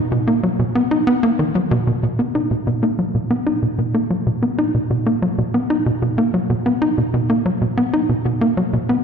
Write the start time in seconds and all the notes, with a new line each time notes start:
0.12 B2
0.27 A#3
0.43 F#3
0.59 B2
0.75 B3
0.91 D#4
1.07 B3
1.23 A#3
1.39 D#3
1.55 F#3
1.71 B2
1.87 B2
2.03 B2
2.19 B3
2.35 D#4
2.51 B2
2.67 B2
2.83 A#3
2.99 F#3
3.15 B2
3.31 B3
3.47 D#4
3.63 B2
3.78 B2
3.94 A#3
4.10 F#3
4.27 B2
4.43 B3
4.59 D#4
4.75 B2
4.90 B2
5.06 A#3
5.22 F#3
5.38 B2
5.54 B3
5.70 D#4
5.86 B2
6.02 B2
6.18 A#3
6.34 F#3
6.50 B2
6.66 B3
6.82 D#4
6.98 B2
7.14 B2
7.30 A#3
7.46 F#3
7.61 B2
7.77 B3
7.93 D#4
8.09 B2
8.25 B2
8.41 A#3
8.57 F#3
8.73 B2
8.89 B3